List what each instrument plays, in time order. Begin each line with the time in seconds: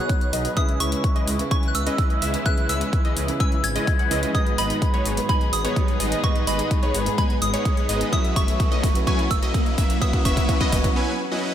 Already playing: grand piano B2 B3 D#4 F#4 B4, string section D#3 F#3 B3 G#4, supersaw synth F#3 B3 D#4 B4 C#5, digital synth lead C#5, synth bell F#6, riser
0.09 kick, closed hi-hat
0.21 closed hi-hat
0.33 detuned saw bass B1, supersaw synth F#3 B3 D#4 B4 D#5, digital synth lead D#5, open hi-hat
0.45 closed hi-hat
0.56 grand piano C#3 C#4 E4 G#4 B4, string section C#3 G#3 B3 E4, supersaw synth G#3 C#4 E4 E5, digital synth lead E5, synth bell D#6, kick, closed hi-hat
0.69 closed hi-hat
0.80 detuned saw bass C#2, supersaw synth G#3 C#4 E4 B4 E5, digital synth lead E5, synth bell C#6, open hi-hat
0.92 closed hi-hat
1.04 kick, closed hi-hat
1.16 supersaw synth G#3 C#4 E4 B4 D#5, digital synth lead D#5, closed hi-hat
1.28 detuned saw bass C#2, open hi-hat
1.38 grand piano C#3 C#4 E4 G#4 B4, closed hi-hat
1.51 supersaw synth G#3 C#4 E4 B4 G#5, digital synth lead G#5, synth bell C#6, kick, closed hi-hat
1.63 closed hi-hat
1.68 synth bell F#6
1.75 detuned saw bass C#2, synth bell E6, open hi-hat
1.87 supersaw synth G#3 C#4 E4 B4 D#5, digital synth lead D#5, closed hi-hat
1.98 kick, closed hi-hat
2.10 closed hi-hat
2.22 detuned saw bass C#2, supersaw synth G#3 C#4 E4 B4 E5, digital synth lead E5, open hi-hat
2.34 closed hi-hat
2.44 grand piano C#3 C#4 E4 G#4 B4, supersaw synth G#3 C#4 E4 B4 E5, digital synth lead E5, synth bell F#6, kick, closed hi-hat
2.58 closed hi-hat
2.69 detuned saw bass C#2, supersaw synth G#3 C#4 E4 B4 E5, digital synth lead E5, synth bell E6, open hi-hat
2.81 closed hi-hat
2.93 kick, closed hi-hat
3.05 supersaw synth G#3 C#4 E4 B4 D#5, digital synth lead D#5, closed hi-hat
3.17 detuned saw bass C#2, open hi-hat
3.27 grand piano C#3 C#4 E4 G#4 B4, closed hi-hat
3.40 supersaw synth G#3 C#4 E4 B4 G#5, digital synth lead G#5, synth bell E6, kick, closed hi-hat
3.52 closed hi-hat
3.64 detuned saw bass G#1, synth bell G#6, open hi-hat
3.76 supersaw synth G#3 C#4 E4 B4 D#5, digital synth lead D#5, closed hi-hat
3.87 kick, closed hi-hat
3.99 supersaw synth G#3 C#4 E4 B4 F#5, digital synth lead F#5, closed hi-hat
4.10 detuned saw bass C#2, supersaw synth G#3 C#4 E4 B4 D#5, grand piano C#4 E4 G#4 B4, digital synth lead D#5, open hi-hat
4.23 closed hi-hat
4.33 grand piano G#2 B3 D#4 G#4 B4, string section D#3 B3 G#4, supersaw synth G#3 B3 D#4 D#5, digital synth lead D#5, synth bell D#6, kick, closed hi-hat
4.46 closed hi-hat
4.58 detuned saw bass G#1, supersaw synth G#3 B3 D#4 B4 D#5, digital synth lead D#5, synth bell B5, open hi-hat
4.70 closed hi-hat
4.82 kick, closed hi-hat
4.94 supersaw synth G#3 B3 D#4 B4 C#5, digital synth lead C#5, closed hi-hat
5.05 detuned saw bass G#1, open hi-hat
5.16 grand piano G#2 B3 D#4 G#4 B4, closed hi-hat
5.29 supersaw synth G#3 B3 D#4 B4 G#5, digital synth lead G#5, synth bell B5, kick, closed hi-hat
5.41 closed hi-hat
5.53 detuned saw bass G#1, synth bell D#6, open hi-hat
5.65 supersaw synth G#3 B3 D#4 B4 C#5, digital synth lead C#5, closed hi-hat
5.76 kick, closed hi-hat
5.88 closed hi-hat
6.00 detuned saw bass G#1, supersaw synth G#3 B3 D#4 B4 D#5, digital synth lead D#5, open hi-hat
6.12 closed hi-hat
6.22 grand piano G#2 B3 D#4 G#4 B4, supersaw synth B3 D#4 B4 D#5, digital synth lead D#5, synth bell C#6, kick, closed hi-hat
6.36 closed hi-hat
6.47 detuned saw bass G#1, supersaw synth G#3 B3 D#4 B4 D#5, digital synth lead D#5, synth bell B5, open hi-hat
6.59 closed hi-hat
6.71 kick, closed hi-hat
6.83 supersaw synth G#3 B3 D#4 B4 C#5, digital synth lead C#5, closed hi-hat
6.94 detuned saw bass G#1, open hi-hat
7.05 grand piano G#2 B3 D#4 G#4 B4, closed hi-hat
7.18 supersaw synth G#3 B3 D#4 B4 G#5, digital synth lead G#5, synth bell B5, kick, closed hi-hat
7.30 closed hi-hat
7.42 detuned saw bass G#1, synth bell D#6, open hi-hat
7.54 supersaw synth G#3 B3 D#4 B4 C#5, digital synth lead C#5, closed hi-hat
7.65 kick, closed hi-hat
7.77 closed hi-hat
7.89 detuned saw bass G#1, supersaw synth G#3 B3 D#4 B4 D#5, digital synth lead D#5, open hi-hat
8.01 closed hi-hat
8.11 string section E3 C#4 F#4, grand piano F#3 C#4 E4 F#4 B4, supersaw synth F#3 C#4 E4 B4 E5, digital synth lead E5, synth bell D#6, kick, closed hi-hat
8.25 closed hi-hat
8.36 detuned saw bass F#1, supersaw synth F#3 C#4 E4 B4 E5, digital synth lead E5, synth bell C#6, kick, open hi-hat
8.48 closed hi-hat
8.60 kick, closed hi-hat
8.72 supersaw synth F#3 C#4 E4 B4 D#5, digital synth lead D#5, closed hi-hat
8.83 detuned saw bass F#1, kick, open hi-hat
8.94 grand piano F#3 C#4 E4 F#4 B4, closed hi-hat
9.07 supersaw synth F#3 C#4 E4 B4 G#5, digital synth lead G#5, synth bell C#6, kick, closed hi-hat
9.19 closed hi-hat
9.31 detuned saw bass F#1, synth bell E6, kick, open hi-hat
9.42 supersaw synth F#3 C#4 E4 B4 D#5, digital synth lead D#5, closed hi-hat
9.54 kick, closed hi-hat
9.66 closed hi-hat
9.78 detuned saw bass F#1, supersaw synth F#3 C#4 E4 B4 E5, digital synth lead E5, kick, open hi-hat
9.90 closed hi-hat
10.00 grand piano F#3 C#4 E4 F#4 B4, supersaw synth F#3 C#4 E4 B4 E5, digital synth lead E5, synth bell D#6, kick, closed hi-hat
10.13 kick, closed hi-hat
10.25 detuned saw bass F#1, supersaw synth F#3 C#4 E4 B4 E5, digital synth lead E5, synth bell C#6, kick, open hi-hat
10.37 kick, closed hi-hat
10.49 kick, closed hi-hat
10.61 supersaw synth F#3 C#4 E4 B4 D#5, digital synth lead D#5, kick, closed hi-hat
10.72 detuned saw bass F#1, kick, open hi-hat
10.83 grand piano F#3 C#4 E4 F#4 B4, kick, closed hi-hat
10.96 supersaw synth F#3 C#4 E4 B4 G#5
11.31 supersaw synth F#3 C#4 E4 B4 D#5